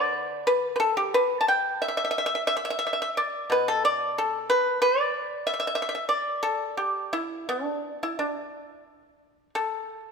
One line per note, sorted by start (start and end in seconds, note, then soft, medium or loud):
0.00 1.81 D3 medium
0.00 0.42 D5 medium
0.47 0.73 B4 medium
0.76 0.79 B4 medium
0.80 0.95 A4 medium
0.97 1.12 G4 medium
1.14 1.39 B4 medium
1.41 1.47 A5 medium
1.48 1.80 G5 medium
1.82 1.87 E5 medium
1.88 1.95 E5 medium
1.97 2.03 E5 medium
2.05 2.10 E5 medium
2.11 2.17 E5 medium
2.18 2.25 E5 medium
2.26 2.33 E5 medium
2.35 2.41 E5 medium
2.47 2.55 E5 medium
2.57 2.63 E5 medium
2.65 2.69 E5 medium
2.70 2.77 E5 medium
2.79 2.85 E5 medium
2.87 2.92 E5 medium
2.93 3.01 E5 medium
3.02 3.09 E5 medium
3.17 3.48 D5 medium
3.50 5.46 B2 medium
3.50 3.67 B4 medium
3.68 3.83 A4 medium
3.85 4.15 D5 medium
4.18 4.48 A4 medium
4.50 4.80 B4 medium
4.82 5.42 D5 medium
5.47 5.52 E5 medium
5.54 5.58 E5 soft
5.60 5.66 E5 medium
5.67 5.74 E5 medium
5.75 5.81 E5 medium
5.82 5.88 E5 medium
5.89 5.93 E5 medium
5.95 6.03 E5 soft
6.09 7.10 D5 medium
6.43 6.76 A4 medium
6.77 7.12 G4 medium
7.13 7.47 E4 medium
7.49 7.98 D4 medium
8.03 8.19 E4 medium
8.19 9.49 D4 medium
9.55 10.00 A4 medium